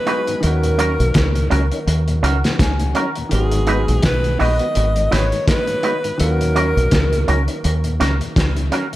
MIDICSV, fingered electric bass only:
0, 0, Header, 1, 2, 480
1, 0, Start_track
1, 0, Tempo, 720981
1, 287, Time_signature, 4, 2, 24, 8
1, 5965, End_track
2, 0, Start_track
2, 0, Title_t, "Fingered electric bass"
2, 0, Program_c, 0, 33
2, 292, Note_on_c, 0, 39, 100
2, 639, Note_off_c, 0, 39, 0
2, 665, Note_on_c, 0, 35, 95
2, 759, Note_off_c, 0, 35, 0
2, 767, Note_on_c, 0, 37, 101
2, 987, Note_off_c, 0, 37, 0
2, 1010, Note_on_c, 0, 37, 92
2, 1133, Note_off_c, 0, 37, 0
2, 1248, Note_on_c, 0, 39, 112
2, 1468, Note_off_c, 0, 39, 0
2, 1487, Note_on_c, 0, 37, 93
2, 1612, Note_off_c, 0, 37, 0
2, 1731, Note_on_c, 0, 37, 107
2, 1949, Note_off_c, 0, 37, 0
2, 2214, Note_on_c, 0, 32, 120
2, 2559, Note_off_c, 0, 32, 0
2, 2587, Note_on_c, 0, 34, 92
2, 2681, Note_off_c, 0, 34, 0
2, 2687, Note_on_c, 0, 35, 98
2, 2907, Note_off_c, 0, 35, 0
2, 2935, Note_on_c, 0, 34, 82
2, 3056, Note_off_c, 0, 34, 0
2, 3173, Note_on_c, 0, 32, 112
2, 3391, Note_off_c, 0, 32, 0
2, 3413, Note_on_c, 0, 32, 89
2, 3535, Note_off_c, 0, 32, 0
2, 4131, Note_on_c, 0, 39, 109
2, 4479, Note_off_c, 0, 39, 0
2, 4506, Note_on_c, 0, 35, 99
2, 4600, Note_off_c, 0, 35, 0
2, 4608, Note_on_c, 0, 37, 93
2, 4828, Note_off_c, 0, 37, 0
2, 4851, Note_on_c, 0, 37, 89
2, 4974, Note_off_c, 0, 37, 0
2, 5092, Note_on_c, 0, 39, 113
2, 5310, Note_off_c, 0, 39, 0
2, 5331, Note_on_c, 0, 37, 88
2, 5454, Note_off_c, 0, 37, 0
2, 5570, Note_on_c, 0, 37, 96
2, 5789, Note_off_c, 0, 37, 0
2, 5965, End_track
0, 0, End_of_file